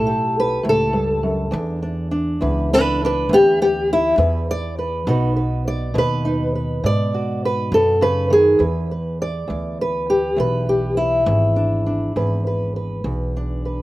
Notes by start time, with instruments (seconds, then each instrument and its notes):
Already playing: upright bass B1, steel-string acoustic guitar A2 A4
0.07 steel-string acoustic guitar G4
0.40 steel-string acoustic guitar B4
0.63 upright bass C#2, steel-string acoustic guitar A2
0.69 steel-string acoustic guitar A4
0.93 steel-string acoustic guitar G2
1.23 steel-string acoustic guitar F#2
1.51 steel-string acoustic guitar E2 D4, upright bass E2
1.83 steel-string acoustic guitar D4
2.11 steel-string acoustic guitar D4
2.41 upright bass C#2, steel-string acoustic guitar E2 B4
2.73 steel-string acoustic guitar D4 B4
3.05 steel-string acoustic guitar D4 B4
3.29 upright bass D2, steel-string acoustic guitar E2 B3
3.34 steel-string acoustic guitar G4
3.62 steel-string acoustic guitar B3 G4
3.93 steel-string acoustic guitar E4
4.18 upright bass E2, steel-string acoustic guitar E2 B4
4.51 steel-string acoustic guitar D5
4.79 steel-string acoustic guitar B4
5.07 upright bass B1, steel-string acoustic guitar B2 B3 D#4 F#4 B4
5.36 steel-string acoustic guitar B4
5.68 steel-string acoustic guitar D5
5.94 upright bass D#2, steel-string acoustic guitar B2
5.98 steel-string acoustic guitar B4
6.25 steel-string acoustic guitar D#4
6.55 steel-string acoustic guitar B4
6.84 upright bass G#2, steel-string acoustic guitar B2 D5
7.14 steel-string acoustic guitar F#4
7.45 steel-string acoustic guitar B4
7.72 upright bass F#2, steel-string acoustic guitar B2 A4
8.01 steel-string acoustic guitar C#3 B4
8.30 steel-string acoustic guitar D#3 G#4
8.59 steel-string acoustic guitar E2 B4, upright bass E2
8.91 steel-string acoustic guitar B4
9.22 steel-string acoustic guitar D5
9.48 upright bass D2, steel-string acoustic guitar E2
9.81 steel-string acoustic guitar B4
10.10 steel-string acoustic guitar G4
10.36 upright bass B1, steel-string acoustic guitar E2 B4
10.69 steel-string acoustic guitar G4
10.97 steel-string acoustic guitar E4
11.26 upright bass G#1, steel-string acoustic guitar E2
11.56 steel-string acoustic guitar D4
11.86 steel-string acoustic guitar D4
12.16 upright bass G#1, steel-string acoustic guitar E2 B4
12.47 steel-string acoustic guitar B4
12.76 steel-string acoustic guitar B4
13.04 upright bass B1, steel-string acoustic guitar E2
13.37 steel-string acoustic guitar D4
13.65 steel-string acoustic guitar B4